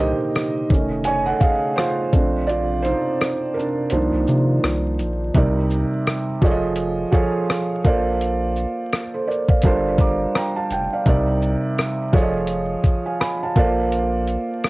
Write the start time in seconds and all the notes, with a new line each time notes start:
Already playing: C2 A#2 C3 D3 D#3 A#3 D#4 A#4 C5 D#5
0.00 G4 D#5
0.36 cross-stick, closed hi-hat
0.70 F1 C#3 D#3 A3 C#4, kick, shaker
1.04 C#5 G#5, closed hi-hat
1.26 A4 F#5
1.40 G#4 F5, kick, shaker
1.76 F4 C5, cross-stick, closed hi-hat
2.13 A#1 C3 A3 C4 D4 D5, kick, closed hi-hat, shaker
2.47 F4 D5, closed hi-hat
2.82 D#4 C5, closed hi-hat, shaker
3.21 cross-stick, closed hi-hat
3.54 D4 A#4
3.59 shaker
3.90 C2 D#3 F3 A#3 D4 D#4 F4 C5, closed hi-hat
4.13 C2
4.27 C3, shaker
4.64 C2, cross-stick, closed hi-hat
4.99 A#1, closed hi-hat, shaker
5.34 C2 C3 G3 D#4 A#4 D5, kick, closed hi-hat
5.70 shaker
6.07 cross-stick, closed hi-hat
6.42 F1 F3 F4 G#4 A4 C#5 D5, kick, shaker
6.51 D#5
6.76 closed hi-hat
7.12 F3 F4 G#4 A4 C#5 F5, kick, shaker
7.50 cross-stick, closed hi-hat
7.84 A#1 A#3 F4 A4 C5 D5, kick, closed hi-hat, shaker
8.21 closed hi-hat
8.56 shaker
8.93 cross-stick, closed hi-hat
9.14 A4 C5
9.27 A#4 D5, shaker
9.49 D5 F5, kick
9.62 G1 G3 D4 F4 A4, kick, closed hi-hat
9.66 A#4 C5
9.98 A#5 D6, kick, shaker
10.36 G5 A#5, cross-stick, closed hi-hat
10.56 F5 A5
10.71 F1 G5, closed hi-hat, shaker
10.93 D5 F5
11.06 C2 C3 G3 D#4 A#4 D5, kick, closed hi-hat
11.42 shaker
11.78 cross-stick, closed hi-hat
12.13 F1 F3 F4 G#4 A4 C#5 D5, kick
12.17 shaker
12.22 D#5
12.47 closed hi-hat
12.84 kick, shaker
13.06 F5 G#5
13.20 G#5 B5, cross-stick, closed hi-hat
13.43 F5 A5
13.56 A#1 A#3 F4 A4 C5 D5, kick, closed hi-hat, shaker
13.92 closed hi-hat
14.28 closed hi-hat, shaker
14.64 cross-stick, closed hi-hat